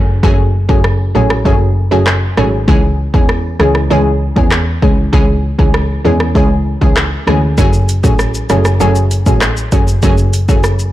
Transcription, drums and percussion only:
0.23 kick
0.69 kick
0.84 cross-stick
1.30 cross-stick
1.45 kick
2.07 cross-stick, clap
2.37 cross-stick
2.68 kick
3.14 kick
3.29 cross-stick
3.60 cross-stick
3.75 cross-stick
4.36 kick
4.51 cross-stick, clap
4.82 kick
5.13 kick
5.59 kick
5.74 cross-stick
6.20 cross-stick
6.35 kick
6.82 kick
6.97 cross-stick, clap
7.27 cross-stick
7.58 kick, shaker
7.73 shaker
7.89 closed hi-hat, shaker
8.04 kick, shaker
8.19 cross-stick, shaker
8.35 shaker
8.50 cross-stick, closed hi-hat, shaker
8.65 cross-stick, shaker
8.81 shaker
8.96 shaker
9.11 closed hi-hat, shaker
9.26 kick, shaker
9.41 cross-stick, clap, shaker
9.57 shaker
9.72 kick, closed hi-hat, shaker
9.88 shaker
10.03 kick, shaker
10.18 shaker
10.33 closed hi-hat, shaker
10.49 kick, shaker
10.64 cross-stick, shaker
10.79 shaker

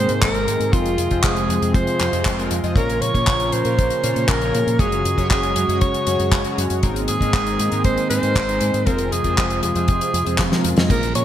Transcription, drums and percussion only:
0.09 closed hi-hat
0.22 kick, clap, closed hi-hat
0.35 closed hi-hat
0.48 closed hi-hat
0.61 closed hi-hat
0.73 kick, closed hi-hat
0.86 closed hi-hat
0.98 closed hi-hat
1.11 kick, closed hi-hat
1.24 kick, clap, closed hi-hat
1.36 closed hi-hat
1.50 closed hi-hat
1.62 closed hi-hat
1.74 kick, closed hi-hat
1.87 closed hi-hat
2.00 clap, closed hi-hat
2.13 closed hi-hat
2.25 kick, clap, closed hi-hat
2.39 closed hi-hat
2.51 closed hi-hat
2.64 closed hi-hat
2.76 kick, closed hi-hat
2.90 closed hi-hat
3.02 closed hi-hat
3.15 kick, closed hi-hat
3.27 kick, clap, closed hi-hat
3.40 closed hi-hat
3.52 closed hi-hat
3.65 closed hi-hat
3.79 kick, closed hi-hat
3.90 closed hi-hat
4.04 closed hi-hat
4.16 closed hi-hat
4.29 kick, clap, closed hi-hat
4.42 closed hi-hat
4.55 closed hi-hat
4.68 closed hi-hat
4.79 kick, closed hi-hat
4.92 closed hi-hat
5.05 closed hi-hat
5.18 kick, closed hi-hat
5.31 kick, clap, closed hi-hat
5.43 closed hi-hat
5.56 closed hi-hat
5.69 closed hi-hat
5.81 kick, closed hi-hat
5.94 closed hi-hat
6.07 closed hi-hat
6.20 closed hi-hat
6.32 kick, clap, closed hi-hat
6.44 closed hi-hat
6.58 closed hi-hat
6.70 closed hi-hat
6.83 kick, closed hi-hat
6.96 closed hi-hat
7.08 closed hi-hat
7.21 kick, closed hi-hat
7.34 kick, clap, closed hi-hat
7.47 closed hi-hat
7.59 closed hi-hat
7.72 closed hi-hat
7.84 kick, closed hi-hat
7.98 closed hi-hat
8.11 closed hi-hat
8.23 closed hi-hat
8.35 kick, clap, closed hi-hat
8.49 closed hi-hat
8.61 closed hi-hat
8.74 closed hi-hat
8.87 kick, closed hi-hat
8.98 closed hi-hat
9.12 closed hi-hat
9.24 kick, closed hi-hat
9.37 kick, clap, closed hi-hat
9.50 closed hi-hat
9.63 closed hi-hat
9.75 closed hi-hat
9.88 kick, closed hi-hat
10.01 closed hi-hat
10.14 closed hi-hat
10.26 closed hi-hat
10.38 kick, snare, clap, closed hi-hat
10.52 snare, closed hi-hat
10.64 closed hi-hat
10.76 snare, closed hi-hat
10.90 kick, closed hi-hat, crash
11.03 closed hi-hat
11.15 closed hi-hat

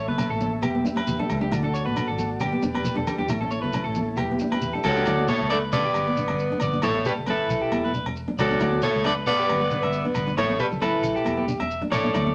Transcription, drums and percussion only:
0.08 high conga
0.18 low agogo, shekere
0.40 high conga, low conga, shekere
0.62 low agogo, shekere
0.85 high conga, shekere
0.97 high conga, low agogo
1.07 low conga, shekere
1.30 low conga, low agogo, shekere
1.52 low agogo, shekere
1.75 shekere
1.87 high conga
1.97 low agogo, shekere
2.18 high conga, low conga, shekere
2.40 low agogo, shekere
2.62 high conga, shekere
2.75 high conga, low agogo
2.85 low conga, shekere
3.07 low conga, low agogo, shekere
3.28 low agogo, shekere
3.42 high conga
3.51 shekere
3.64 high conga
3.73 low agogo, shekere
3.95 high conga, low conga, shekere
4.17 low agogo, shekere
4.39 high conga, shekere
4.52 high conga, low agogo
4.61 shekere
4.83 low conga, low agogo, shekere
5.05 low agogo, shekere
5.18 high conga
5.28 high conga, shekere
5.50 low agogo, shekere
5.72 low conga, shekere
5.94 low agogo, shekere
6.17 shekere
6.28 low agogo
6.39 shekere
6.51 high conga
6.60 low conga, low agogo, shekere
6.73 high conga, shekere
6.82 low agogo, shekere
6.95 high conga
7.05 high conga, shekere
7.26 low agogo, shekere
7.50 low conga, shekere
7.72 low agogo, shekere
7.94 shekere
8.06 low agogo
8.16 shekere
8.28 high conga
8.39 low conga, low agogo, shekere
8.50 high conga, shekere
8.60 low agogo, shekere
8.73 high conga
8.82 high conga, shekere
9.04 low agogo, shekere
9.26 shekere
9.49 low agogo, shekere
9.71 high conga, shekere
9.83 low agogo
9.93 shekere
10.06 high conga
10.15 low conga, low agogo, shekere
10.28 high conga, shekere
10.38 low agogo, shekere
10.50 high conga
10.59 shekere
10.72 low conga, shekere
10.82 low agogo, shekere
11.04 low conga, shekere
11.16 shekere
11.26 low agogo, shekere
11.48 high conga, shekere
11.60 low agogo, shekere
11.71 shekere
11.82 high conga
11.92 low conga, low agogo, shekere
12.04 high conga, shekere
12.14 low agogo, shekere
12.26 high conga

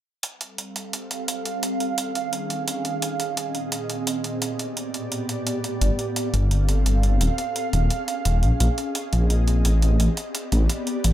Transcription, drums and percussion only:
0.23 closed hi-hat
0.41 closed hi-hat
0.58 closed hi-hat
0.76 closed hi-hat
0.93 closed hi-hat
1.11 closed hi-hat
1.28 closed hi-hat
1.46 closed hi-hat
1.63 closed hi-hat
1.80 closed hi-hat
1.98 closed hi-hat
2.15 closed hi-hat
2.33 closed hi-hat
2.50 closed hi-hat
2.68 closed hi-hat
2.85 closed hi-hat
3.02 closed hi-hat
3.20 closed hi-hat
3.37 closed hi-hat
3.55 closed hi-hat
3.72 closed hi-hat
3.90 closed hi-hat
4.07 closed hi-hat
4.24 closed hi-hat
4.42 closed hi-hat
4.59 closed hi-hat
4.77 closed hi-hat
4.94 closed hi-hat
5.12 closed hi-hat
5.29 closed hi-hat
5.47 closed hi-hat
5.64 closed hi-hat
5.81 closed hi-hat
5.99 closed hi-hat
6.16 closed hi-hat
6.34 closed hi-hat
6.51 closed hi-hat
6.69 closed hi-hat
6.86 closed hi-hat
7.03 closed hi-hat
7.21 closed hi-hat
7.38 closed hi-hat
7.56 closed hi-hat
7.73 closed hi-hat
7.90 closed hi-hat
8.08 closed hi-hat
8.25 closed hi-hat
8.43 closed hi-hat
8.60 closed hi-hat
8.78 closed hi-hat
8.95 closed hi-hat
9.13 closed hi-hat
9.30 closed hi-hat
9.48 closed hi-hat
9.65 closed hi-hat
9.82 closed hi-hat
10.00 closed hi-hat
10.17 closed hi-hat
10.35 closed hi-hat
10.52 closed hi-hat
10.69 closed hi-hat
10.87 closed hi-hat
11.04 closed hi-hat

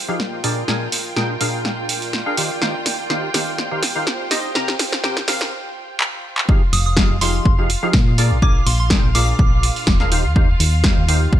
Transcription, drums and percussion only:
0.20 snare
0.44 open hi-hat
0.68 snare
0.92 open hi-hat
1.16 snare
1.41 open hi-hat
1.65 snare
1.89 open hi-hat
2.02 open hi-hat
2.13 snare
2.37 open hi-hat
2.62 snare
2.86 snare, open hi-hat
3.10 snare
3.34 snare, open hi-hat
3.58 snare
3.83 snare, open hi-hat
4.07 snare
4.31 snare, open hi-hat
4.55 snare
4.68 snare
4.79 snare, open hi-hat
4.92 snare
5.04 snare
5.17 snare
5.28 snare, open hi-hat
5.41 snare
6.00 clap
6.38 clap
6.49 kick
6.73 open hi-hat
6.97 kick, snare
7.21 open hi-hat
7.45 kick
7.70 open hi-hat
7.93 kick, snare
8.18 open hi-hat
8.42 kick
8.67 open hi-hat
8.90 kick, snare
9.15 open hi-hat
9.39 kick
9.63 open hi-hat
9.76 open hi-hat
9.87 kick, snare
10.00 snare
10.12 open hi-hat
10.36 kick
10.60 open hi-hat
10.84 kick, snare
11.09 open hi-hat
11.33 kick

